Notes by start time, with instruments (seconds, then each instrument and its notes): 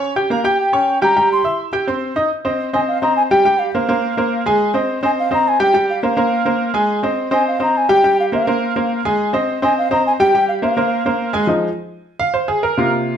Already playing: grand piano C#4 C#5 C#6
0.16 grand piano G4 G5 G6
0.30 grand piano A#3 A#4 A#5, bansuri F5
0.44 grand piano G4 G5 G6, bansuri G5
0.60 bansuri G5
0.73 grand piano C#4 C#5 C#6
1.02 grand piano G3 G4 G5, bansuri A#5
1.16 grand piano G3 G4 G5
1.32 bansuri C6
1.44 grand piano E4 E5 E6
1.73 grand piano G4 G5 G6
1.87 grand piano C4 C5 C6
2.16 grand piano D#4 D#5 D#6
2.45 grand piano C4 C5 D#5
2.73 grand piano C4 C5 D#5, bansuri G#5
2.88 bansuri F5
3.02 grand piano C4 C5 D#5, bansuri A#5
3.17 bansuri G#5
3.31 grand piano G3 G4 G5, bansuri G5
3.45 grand piano G3 G4 G5
3.59 bansuri F5
3.74 grand piano A#3 A#4 C5, bansuri F5
3.89 grand piano A#3 A#4 C5
4.17 grand piano A#3 A#4 C5
4.46 grand piano G#3 G#4 G#5
4.74 grand piano C4 C5 D#5
5.03 grand piano C4 C5 D#5, bansuri G#5
5.19 bansuri F5
5.31 grand piano C4 C5 D#5, bansuri A#5
5.48 bansuri G#5
5.60 grand piano G3 G4 G5, bansuri G5
5.74 grand piano G3 G4 G5
5.90 bansuri F5
6.03 grand piano A#3 A#4 C5, bansuri F5
6.17 grand piano A#3 A#4 C5
6.45 grand piano A#3 A#4 C5
6.74 grand piano G#3 G#4 G#5
7.03 grand piano C4 C5 D#5
7.31 grand piano C4 C5 D#5, bansuri G#5
7.48 bansuri F5
7.60 grand piano C4 C5 D#5, bansuri A#5
7.77 bansuri G#5
7.89 grand piano G3 G4 G5, bansuri G5
8.04 grand piano G3 G4 G5
8.20 bansuri F5
8.32 grand piano A#3 A#4 C5, bansuri F5
8.47 grand piano A#3 A#4 C5
8.76 grand piano A#3 A#4 C5
9.05 grand piano G#3 G#4 G#5
9.33 grand piano C4 C5 D#5
9.62 grand piano C4 C5 D#5, bansuri G#5
9.78 bansuri F5
9.91 grand piano C4 C5 D#5, bansuri A#5
10.07 bansuri G#5
10.20 grand piano G3 G4 G5, bansuri G5
10.34 grand piano G3 G4 G5
10.48 bansuri F5
10.62 grand piano A#3 A#4 C5, bansuri F5
10.77 grand piano A#3 A#4 C5
11.06 grand piano A#3 A#4 C5
11.33 grand piano G#3 G#4 G#5
11.47 grand piano F3 G#3 D#4
12.20 grand piano F5
12.34 grand piano C5
12.48 grand piano G#4
12.63 grand piano A#4
12.77 grand piano C3 A#3 F4